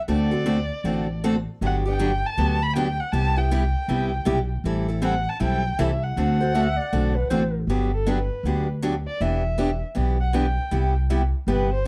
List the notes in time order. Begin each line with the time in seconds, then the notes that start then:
0.08 D2 D3 A3 C4 F#4 A4 D5
0.31 C4 F#4 A4
0.46 D3 A3 C4 F#4 A4
0.84 A1 D3 A3 C4 F#4 A4
1.24 D3 A3 C4 F#4 A4
1.61 G1 D3 F#3 B3 D4 G4
1.66 F#5
1.85 B3 D4 G4
1.90 G5
1.99 D3 F#3 B3 D4 G4
2.26 A5
2.37 D2 D3 F#3 B3 D4 G4
2.63 B5
2.76 D3 F#3 B3 D4 G4 G5
3.00 F#5
3.12 C2 C3 G3 B3 E4 G4 A5
3.36 B3 E4 G4 G5
3.51 C3 G3 B3 E4 G4
3.88 C2 C3 G3 B3 E4 G4
4.25 B1 C3 G3 B3 E4 G4
4.64 A1 E3 G3 C4 E4 A4
4.88 C4 E4 A4
5.02 E3 G3 C4 E4 A4 F#5
5.29 A5
5.40 B1 E3 G3 C4 E4 A4 G5
5.79 C2 E3 G3 C4 E4 A4 E5
6.03 F#5
6.16 D2 D3 A3 C4 F#4 A4
6.40 C4 F#4 A4 C5
6.54 D3 A3 C4 F#4 A4 E5
6.77 D5
6.93 B1 D3 A3 C4 F#4 A4
7.16 B4
7.30 A1 D3 A3 C4 F#4 A4 C5
7.67 G1 D3 F#3 B3 D4 G4
7.93 A4
8.06 D3 F#3 B3 D4 G4 B4
8.43 D2 D3 F#3 B3 D4 G4
8.82 D3 F#3 B3 D4 G4
9.07 D5
9.20 E1 E3 B3 D4 G4 E5
9.58 E3 B3 D4 G4
9.95 B1 E3 B3 D4 G4
10.21 F#5
10.33 E3 B3 D4 G4 G5
10.71 C2 C3 G3 B3 E4 G4
11.10 C3 G3 B3 E4 G4
11.47 G1 C3 G3 B3 E4 G4
11.51 B4
11.74 C5